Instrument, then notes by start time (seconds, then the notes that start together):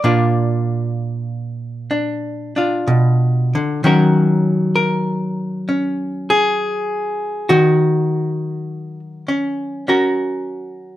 hollow-body jazz guitar
Already playing: D5
0.04 A#2 A#3 D4 F4
1.91 D4
2.56 D4 F4
2.88 B2
3.55 D3
3.84 D#3 F#3 C#4 F#4 A#4
4.76 A#4
5.69 C#4
6.30 G#4
7.49 D#3 F#4
9.28 C#4
9.88 C#4 F#4 A#4